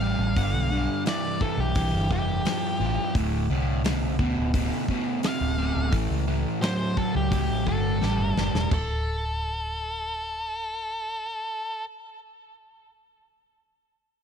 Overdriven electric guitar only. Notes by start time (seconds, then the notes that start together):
0.01 A2 G3
0.36 G2 D3
0.71 G2 D3
1.06 G2 E3
1.41 G2 E3
1.76 G2 E3
2.11 G2 E3
2.45 G2 F3
2.80 G2 F3
3.15 D2 A2
3.50 D2 A2
3.84 D2 B2
4.20 D2 B2
4.55 D2 B2
4.90 D2 B2
5.23 D2 C3
5.58 D2 C3
5.92 A2 E3
6.28 A2 E3
6.62 A2 F#3
6.96 A2 F#3
7.31 A2 F#3
7.66 A2 F#3
8.01 A2 G3
8.37 A2 G3